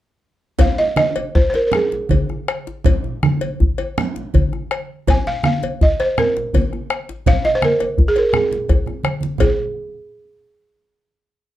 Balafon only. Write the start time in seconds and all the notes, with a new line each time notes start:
0.61 F5
0.78 D#5
0.97 D#5
1.35 C5
1.50 C5
1.55 A#4
1.67 A#4
1.75 G#4
5.10 G#5
5.27 F5
5.45 F5
5.83 D#5
6.00 C5
6.19 A#4
7.28 F5
7.45 D#5
7.55 C5
7.65 A#4
8.08 G#4
8.18 A#4
8.29 A#4
8.36 G#4
9.40 G#4